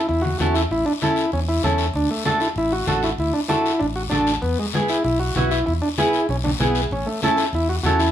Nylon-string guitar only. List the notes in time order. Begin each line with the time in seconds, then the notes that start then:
0.40 C#4 E4 A4
1.02 C#4 E4 A4
1.63 C#4 E4 A4
2.25 D4 F#4 A4
2.87 D4 F#4 A4
3.48 D4 F#4 A4
4.11 D4 F#4 A4
4.74 B3 E4 G#4
5.36 B3 E4 F#4
5.98 B3 E4 G#4
6.60 B3 E4 G#4
7.23 C#4 E4 A4
7.85 C#4 E4 A4